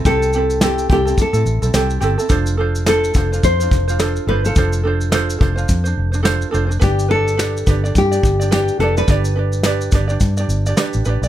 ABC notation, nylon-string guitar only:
X:1
M:4/4
L:1/16
Q:"Swing 16ths" 1/4=106
K:Flyd
V:1 name="Nylon-string guitar"
A4 G2 G2 A6 z2 | z4 A4 c6 B A- | A8- A3 z4 z | G2 A6 G4 G2 A B- |
B12 z4 |]